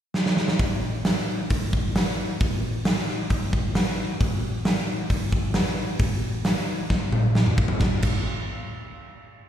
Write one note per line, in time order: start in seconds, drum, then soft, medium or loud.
0.14 snare medium
0.26 snare medium
0.37 snare medium
0.48 snare loud
0.59 kick loud
0.59 open hi-hat medium
1.05 snare loud
1.05 open hi-hat medium
1.50 kick medium
1.50 open hi-hat medium
1.73 kick medium
1.96 snare loud
1.96 open hi-hat medium
2.40 kick loud
2.40 open hi-hat medium
2.85 snare loud
2.85 open hi-hat medium
3.08 snare soft
3.30 kick medium
3.30 open hi-hat medium
3.53 kick medium
3.75 snare loud
3.75 open hi-hat medium
4.21 kick loud
4.21 open hi-hat medium
4.65 snare loud
4.65 open hi-hat medium
5.10 kick medium
5.10 open hi-hat medium
5.32 kick medium
5.54 snare loud
5.54 open hi-hat medium
5.99 kick loud
5.99 open hi-hat medium
6.45 snare loud
6.45 open hi-hat medium
6.90 kick medium
6.90 snare medium
7.12 mid tom medium
7.35 snare medium
7.46 mid tom medium
7.58 kick loud
7.68 floor tom medium
7.80 kick loud
7.80 snare medium
8.02 kick loud
8.02 crash medium